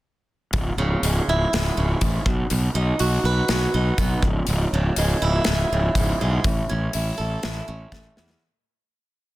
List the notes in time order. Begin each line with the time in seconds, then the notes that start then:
0.53 C#1 C#2, kick, open hi-hat
0.77 C#1 C#3
1.02 C#1 G#3, open hi-hat
1.28 C#1 E4
1.53 C#1 G#3, snare, open hi-hat
1.77 C#1 C#3
2.01 A1 G#2, kick, open hi-hat
2.26 B1 B2, kick
2.50 B1 B2, open hi-hat
2.75 B1 D#4
2.99 B1 F#4, open hi-hat
3.24 B1 B4
3.48 B1 F#4, snare, open hi-hat
3.74 B1 D#4
3.98 B1 B3, kick, open hi-hat
4.23 C#1 C#2, kick
4.47 C#1 C#2, open hi-hat
4.73 C#1 C#3
4.96 C#1 G#3, open hi-hat
5.22 C#1 E4
5.45 C#1 G#3, snare, open hi-hat
5.72 C#1 C#3
5.95 C#1 G#2, kick, open hi-hat
6.21 B1 G#3
6.44 A1 A2, kick, open hi-hat
6.69 A1 C#4
6.93 A1 E4, open hi-hat
7.18 A1 A4
7.43 A1 E4, snare, open hi-hat
7.68 A1 C#4
7.92 A1 A3, kick, snare
8.17 E2 E4, snare
8.30 snare